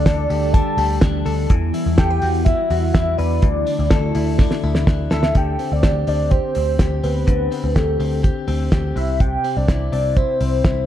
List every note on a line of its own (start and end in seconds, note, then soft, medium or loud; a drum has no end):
0.00 1.47 D3 medium
0.00 1.50 D3 medium
0.00 1.46 G3 loud
0.00 0.53 D4 medium
0.00 1.47 D4 medium
0.00 0.30 G4 medium
0.00 1.47 A4 medium
0.00 0.55 D5 loud
0.06 0.26 D2 loud
0.06 1.24 A4 medium
0.06 kick loud
0.06 snare loud
0.06 closed hi-hat medium
0.30 0.60 D2 loud
0.30 0.78 G4 medium
0.30 open hi-hat medium
0.54 1.01 D4 medium
0.54 1.26 A5 loud
0.54 kick loud
0.54 closed hi-hat medium
0.77 0.97 D2 medium
0.77 1.55 G4 medium
0.77 open hi-hat medium
1.01 1.22 D2 loud
1.01 1.55 D4 medium
1.01 kick loud
1.01 snare loud
1.01 closed hi-hat medium
1.26 1.46 D2 loud
1.26 1.55 A4 medium
1.26 open hi-hat medium
1.50 1.70 E2 loud
1.50 3.43 E3 medium
1.50 3.42 E3 medium
1.50 3.41 G3 medium
1.50 3.41 B3 medium
1.50 3.41 E4 medium
1.50 kick loud
1.50 closed hi-hat medium
1.74 2.46 E4 medium
1.74 open hi-hat medium
1.86 1.96 E2 loud
1.98 2.18 E2 loud
1.98 2.10 A4 medium
1.98 2.46 G5 loud
1.98 kick loud
1.98 snare loud
1.98 closed hi-hat medium
2.10 3.17 B4 medium
2.22 2.52 E2 medium
2.22 2.70 F#4 medium
2.22 open hi-hat medium
2.45 2.94 E4 medium
2.45 2.93 E5 loud
2.45 kick loud
2.45 closed hi-hat medium
2.70 2.90 E2 loud
2.70 3.48 F#4 medium
2.70 open hi-hat medium
2.94 3.14 E2 medium
2.94 3.48 E4 medium
2.94 3.19 E5 loud
2.94 kick loud
2.94 snare loud
2.94 closed hi-hat medium
3.18 3.39 E2 loud
3.18 3.48 B4 medium
3.18 4.87 D5 medium
3.18 open hi-hat medium
3.42 3.63 D2 loud
3.42 5.35 D3 medium
3.42 5.33 D3 medium
3.42 5.33 A3 medium
3.42 5.33 E4 medium
3.42 5.33 F#4 medium
3.42 kick loud
3.42 closed hi-hat medium
3.67 4.39 D4 medium
3.67 open hi-hat medium
3.79 3.89 D2 medium
3.90 4.11 D2 loud
3.90 5.10 A4 medium
3.90 kick loud
3.90 snare loud
3.90 closed hi-hat medium
4.15 4.45 D2 medium
4.15 4.62 E4 medium
4.15 open hi-hat medium
4.39 4.87 D4 medium
4.39 kick loud
4.39 snare medium
4.51 snare medium
4.63 4.83 D2 loud
4.63 5.40 E4 medium
4.75 snare medium
4.87 5.07 D2 loud
4.87 5.59 D4 medium
4.87 kick loud
4.87 snare medium
5.11 5.31 D2 medium
5.11 5.86 A4 medium
5.11 5.34 E5 loud
5.11 snare loud
5.23 snare medium
5.35 5.55 D2 loud
5.35 7.26 D3 medium
5.35 5.74 G5 loud
5.35 kick loud
5.35 closed hi-hat medium
5.59 6.07 C4 medium
5.59 open hi-hat medium
5.72 5.81 D2 medium
5.72 6.08 D5 loud
5.83 6.03 D2 medium
5.83 6.31 G4 medium
5.83 kick loud
5.83 snare loud
5.83 closed hi-hat medium
6.07 6.37 D2 medium
6.07 6.55 C4 soft
6.07 6.30 D5 loud
6.07 open hi-hat medium
6.31 6.79 G4 medium
6.31 7.00 C5 medium
6.31 kick medium
6.31 closed hi-hat medium
6.55 6.76 D2 medium
6.55 7.03 C4 medium
6.55 open hi-hat medium
6.79 6.99 D2 medium
6.79 7.75 G4 medium
6.79 kick loud
6.79 snare loud
6.79 closed hi-hat medium
7.04 7.24 D2 medium
7.04 7.51 C4 soft
7.04 7.78 B4 medium
7.04 open hi-hat medium
7.27 7.47 D2 medium
7.27 9.01 D3 medium
7.27 kick loud
7.27 closed hi-hat medium
7.52 7.99 C4 medium
7.52 open hi-hat medium
7.64 7.74 D2 medium
7.76 7.96 D2 medium
7.76 8.23 G4 medium
7.76 8.24 A4 medium
7.76 kick medium
7.76 snare medium
7.76 closed hi-hat medium
8.00 8.29 D2 medium
8.00 8.47 C4 medium
8.00 open hi-hat medium
8.23 8.71 G4 medium
8.23 kick loud
8.23 closed hi-hat medium
8.48 8.68 D2 medium
8.48 9.44 C4 medium
8.48 open hi-hat medium
8.72 8.92 D2 medium
8.72 9.68 G4 medium
8.72 kick loud
8.72 snare loud
8.72 closed hi-hat medium
8.96 9.35 C2 medium
8.96 9.19 C3 medium
8.96 9.22 E5 medium
8.96 open hi-hat medium
9.20 10.86 C3 medium
9.20 9.58 G5 loud
9.20 kick loud
9.20 closed hi-hat medium
9.44 9.92 C4 medium
9.44 open hi-hat medium
9.57 9.66 C2 medium
9.57 9.92 D5 medium
9.68 10.16 E4 medium
9.68 kick loud
9.68 snare loud
9.68 closed hi-hat medium
9.92 10.22 C2 medium
9.92 10.40 C4 soft
9.92 10.18 D5 medium
9.92 open hi-hat medium
10.16 10.63 E4 medium
10.16 10.86 C5 medium
10.16 kick loud
10.16 closed hi-hat medium
10.41 10.60 C2 medium
10.41 10.86 C4 medium
10.41 open hi-hat medium
10.64 10.85 C2 medium
10.64 10.86 E4 medium
10.64 kick loud
10.64 snare loud
10.64 closed hi-hat medium